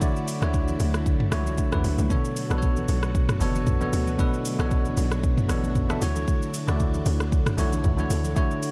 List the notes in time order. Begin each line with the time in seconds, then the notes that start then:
Already playing: D3 F#3 A3 D4 E4 F#4 C#5 E5
0.00 D3 A3 E4 F#4 D5, kick, low conga, shaker
0.16 shaker
0.28 open hi-hat, shaker
0.41 D2 D3 A3 E4 F#4 C#5, cross-stick, high conga, shaker
0.54 kick, low conga, shaker
0.68 high conga, shaker
0.80 D2, open hi-hat, shaker
0.94 cross-stick, shaker
1.06 kick, shaker
1.20 mid tom
1.31 C#2 D3 A3 E4 F#4 C#5, cross-stick, open hi-hat, high conga, shaker
1.46 high conga, shaker
1.58 kick, low conga, shaker
1.71 E2 D3 A3 E4 F#4 B4, kick, cross-stick, high conga, shaker
1.84 D2, open hi-hat, low conga, shaker
1.98 C#2, high conga, shaker
2.09 B2 D3 B3 D4 F#4 A4 C#5, kick, low conga, shaker
2.25 shaker
2.36 open hi-hat, shaker
2.50 B1 B2 B3 D4 A4 B4, cross-stick, high conga, shaker
2.58 C#5
2.62 kick, low conga, shaker
2.76 high conga, shaker
2.88 B1, open hi-hat, shaker
3.03 cross-stick, shaker
3.15 kick, shaker
3.29 cross-stick, mid tom, shaker
3.40 F#1 B2 B3 D4 A4 C#5, open hi-hat, high conga, shaker
3.55 high conga, shaker
3.66 B1, kick, mid tom, low conga, shaker
3.80 B2 B3 D4 A4 C#5, high conga, shaker
3.93 D2, open hi-hat, low conga, shaker
4.07 high conga, shaker
4.18 B2 B3 D4 E4 A4 B4, kick, low conga, shaker
4.34 shaker
4.45 open hi-hat, shaker
4.58 B1 B2 B3 C#4 A4 C#5, cross-stick, high conga, shaker
4.66 D4
4.71 kick, low conga, shaker
4.85 high conga, shaker
4.97 B1, open hi-hat, shaker
5.12 cross-stick, shaker
5.24 kick, shaker
5.38 mid tom, shaker
5.48 A1 B2 B3 D4 A4 C#5, cross-stick, open hi-hat, high conga, shaker
5.64 high conga, shaker
5.75 kick, mid tom, low conga, shaker
5.89 B2 B3 D4 A4 E5, cross-stick, high conga, shaker
6.01 D2 D3 A3 D4 E4 F#4 C#5, open hi-hat, low conga, shaker
6.16 high conga, shaker
6.28 kick, low conga, shaker
6.42 shaker
6.54 open hi-hat, shaker
6.67 D2 D3 A3 E4 F#4 D5, cross-stick, high conga, shaker
6.80 kick, low conga, shaker
6.94 high conga, shaker
7.06 D2, open hi-hat, shaker
7.20 cross-stick, shaker
7.32 kick, shaker
7.46 cross-stick, mid tom, shaker
7.57 B1 D3 A3 E4 F#4 C#5, open hi-hat, high conga, shaker
7.72 high conga, shaker
7.84 C#2, kick, mid tom, low conga, shaker
7.97 D3 A3 E4 F#4 C#5, high conga, shaker
8.10 D2 F#4, open hi-hat, low conga, shaker
8.24 high conga, shaker
8.35 D3 A3 E4 F#4 C#5, kick, low conga, shaker
8.51 shaker
8.63 open hi-hat, shaker